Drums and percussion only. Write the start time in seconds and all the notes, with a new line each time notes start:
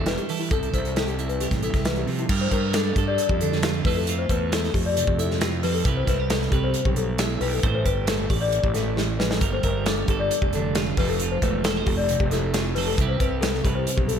0.06 snare, closed hi-hat
0.17 closed hi-hat
0.29 open hi-hat
0.51 kick, closed hi-hat
0.63 closed hi-hat
0.74 kick, closed hi-hat
0.85 closed hi-hat
0.96 snare, closed hi-hat
1.08 closed hi-hat
1.19 closed hi-hat
1.29 closed hi-hat
1.40 closed hi-hat
1.51 kick, snare, closed hi-hat
1.63 closed hi-hat
1.74 kick, snare, closed hi-hat
1.85 snare, closed hi-hat
1.96 closed hi-hat
2.08 open hi-hat
2.19 closed hi-hat
2.29 kick, crash
2.51 kick, closed hi-hat
2.73 snare, closed hi-hat
2.96 kick, closed hi-hat
3.18 closed hi-hat
3.29 kick
3.41 closed hi-hat
3.52 snare
3.63 snare, closed hi-hat
3.85 kick, open hi-hat
4.07 closed hi-hat
4.29 kick, closed hi-hat
4.52 snare, closed hi-hat
4.64 snare
4.74 kick, open hi-hat
4.97 closed hi-hat
5.07 kick
5.19 closed hi-hat
5.31 snare
5.41 snare, closed hi-hat
5.63 open hi-hat
5.85 kick, closed hi-hat
6.07 kick, snare, closed hi-hat
6.30 snare, closed hi-hat
6.42 snare
6.52 kick, closed hi-hat
6.74 closed hi-hat
6.85 kick
6.96 closed hi-hat
7.18 snare, closed hi-hat
7.41 open hi-hat
7.63 kick, closed hi-hat
7.86 kick, closed hi-hat
8.07 snare, closed hi-hat
8.30 kick, open hi-hat
8.52 closed hi-hat
8.64 kick
8.74 snare, closed hi-hat
8.97 snare
9.20 snare
9.31 snare
9.41 kick, closed hi-hat
9.63 kick, closed hi-hat
9.86 snare, closed hi-hat
10.08 kick, closed hi-hat
10.31 closed hi-hat
10.42 kick
10.53 closed hi-hat
10.75 snare, closed hi-hat
10.97 kick, open hi-hat
11.19 closed hi-hat
11.42 kick, closed hi-hat
11.64 snare, closed hi-hat
11.86 kick, open hi-hat
12.09 closed hi-hat
12.20 kick
12.31 snare, closed hi-hat
12.54 snare, closed hi-hat
12.76 open hi-hat
12.98 kick, closed hi-hat
13.20 kick, closed hi-hat
13.42 snare, closed hi-hat
13.54 snare
13.65 kick, closed hi-hat
13.87 closed hi-hat
13.98 kick
14.09 closed hi-hat